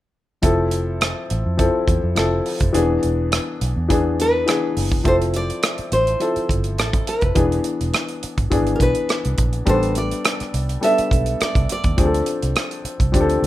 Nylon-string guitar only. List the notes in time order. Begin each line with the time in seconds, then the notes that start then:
4.21 B4
5.08 C5
5.36 D5
5.93 C5
6.80 A4
7.09 B4
8.76 A#4
8.82 B4
9.69 C5
9.98 D5
10.84 E5
11.43 D5
11.72 D5